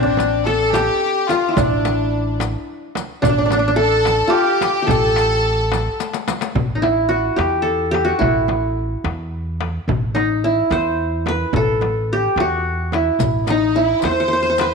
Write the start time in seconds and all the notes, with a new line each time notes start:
Already playing: A1 C4
0.03 D4
0.17 riq, darbuka tek, frame drum
0.45 A4
0.73 G4, riq, darbuka tek, frame drum
1.28 F4, riq, darbuka tek, frame drum
1.49 E4
1.57 A1 D4, riq, darbuka dum, frame drum
1.85 riq, darbuka tek, frame drum
2.40 riq, darbuka tek, frame drum
2.95 riq, darbuka tek, frame drum
3.22 A1 D4, riq, frame drum, darbuka dum
3.29 D4
3.38 D4
3.46 D4
3.50 D4, riq, darbuka tek, frame drum
3.59 D4
3.68 D4
3.76 A4
4.05 riq, darbuka tek, frame drum
4.28 F4 G4
4.35 G4
4.61 riq, darbuka tek, frame drum
4.82 G4
4.87 A1 A4, riq, darbuka dum, frame drum
5.16 riq, darbuka tek
5.72 riq, darbuka tek, frame drum
6.00 riq, darbuka tek
6.13 riq, darbuka ka
6.28 riq, darbuka tek, frame drum
6.41 riq, darbuka ka
6.55 A1, frame drum, darbuka dum
6.75 D#4
6.82 E4, darbuka tek, frame drum
7.09 F#4
7.36 E2 G4, darbuka tek, frame drum
7.62 A4
7.91 G4, darbuka tek, frame drum
8.05 F#4
8.19 A1 E4, frame drum, darbuka dum
8.48 darbuka tek, frame drum
9.04 E2, darbuka tek, frame drum
9.60 darbuka tek, frame drum
9.88 A1, frame drum, darbuka dum
10.15 D#4, darbuka tek, frame drum
10.44 E4
10.71 E2 C5, darbuka tek, frame drum
11.26 B4, darbuka tek, frame drum
11.53 A1 A4, frame drum, darbuka dum
11.81 darbuka tek, frame drum
12.13 G4
12.36 E2, darbuka tek, frame drum
12.40 F#4
12.92 E4, darbuka tek, frame drum
13.19 A1, riq, darbuka dum, frame drum
13.47 D#4, riq, darbuka tek, frame drum
13.76 E4
14.02 E2 C5, riq, darbuka tek, frame drum
14.11 C5
14.20 C5
14.28 C5
14.33 C5
14.43 C5
14.50 C5
14.58 B4, riq, darbuka tek, frame drum